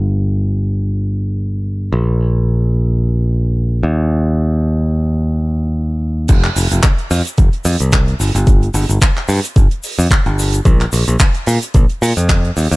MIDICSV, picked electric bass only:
0, 0, Header, 1, 2, 480
1, 0, Start_track
1, 0, Tempo, 545455
1, 1695, Time_signature, 4, 2, 24, 8
1, 11231, End_track
2, 0, Start_track
2, 0, Title_t, "Picked electric bass"
2, 0, Program_c, 0, 34
2, 0, Note_on_c, 0, 31, 76
2, 1673, Note_off_c, 0, 31, 0
2, 1694, Note_on_c, 0, 34, 80
2, 3353, Note_off_c, 0, 34, 0
2, 3374, Note_on_c, 0, 39, 77
2, 5513, Note_off_c, 0, 39, 0
2, 5536, Note_on_c, 0, 29, 100
2, 5703, Note_off_c, 0, 29, 0
2, 5775, Note_on_c, 0, 29, 94
2, 5863, Note_off_c, 0, 29, 0
2, 5909, Note_on_c, 0, 29, 87
2, 5979, Note_off_c, 0, 29, 0
2, 6255, Note_on_c, 0, 41, 95
2, 6343, Note_off_c, 0, 41, 0
2, 6495, Note_on_c, 0, 29, 83
2, 6583, Note_off_c, 0, 29, 0
2, 6734, Note_on_c, 0, 41, 103
2, 6822, Note_off_c, 0, 41, 0
2, 6868, Note_on_c, 0, 36, 90
2, 7157, Note_off_c, 0, 36, 0
2, 7214, Note_on_c, 0, 31, 91
2, 7303, Note_off_c, 0, 31, 0
2, 7346, Note_on_c, 0, 31, 101
2, 7636, Note_off_c, 0, 31, 0
2, 7692, Note_on_c, 0, 31, 94
2, 7782, Note_off_c, 0, 31, 0
2, 7826, Note_on_c, 0, 31, 87
2, 7898, Note_off_c, 0, 31, 0
2, 8172, Note_on_c, 0, 43, 94
2, 8262, Note_off_c, 0, 43, 0
2, 8415, Note_on_c, 0, 31, 81
2, 8503, Note_off_c, 0, 31, 0
2, 8787, Note_on_c, 0, 41, 93
2, 8859, Note_off_c, 0, 41, 0
2, 9029, Note_on_c, 0, 31, 104
2, 9318, Note_off_c, 0, 31, 0
2, 9374, Note_on_c, 0, 34, 103
2, 9542, Note_off_c, 0, 34, 0
2, 9616, Note_on_c, 0, 34, 95
2, 9704, Note_off_c, 0, 34, 0
2, 9748, Note_on_c, 0, 34, 91
2, 9819, Note_off_c, 0, 34, 0
2, 10096, Note_on_c, 0, 46, 94
2, 10184, Note_off_c, 0, 46, 0
2, 10337, Note_on_c, 0, 34, 86
2, 10424, Note_off_c, 0, 34, 0
2, 10578, Note_on_c, 0, 46, 103
2, 10665, Note_off_c, 0, 46, 0
2, 10709, Note_on_c, 0, 41, 88
2, 10998, Note_off_c, 0, 41, 0
2, 11059, Note_on_c, 0, 39, 90
2, 11145, Note_off_c, 0, 39, 0
2, 11189, Note_on_c, 0, 39, 98
2, 11231, Note_off_c, 0, 39, 0
2, 11231, End_track
0, 0, End_of_file